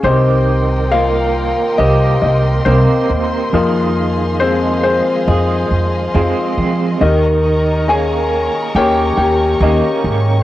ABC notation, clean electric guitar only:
X:1
M:4/4
L:1/8
Q:1/4=69
K:Cphr
V:1 name="Clean electric guitar"
[E,G]2 B,2 G2 [B,CG] C | [E,A]2 A,2 A2 [A,CA] C | E,2 B,2 G2 [B,DG] D |]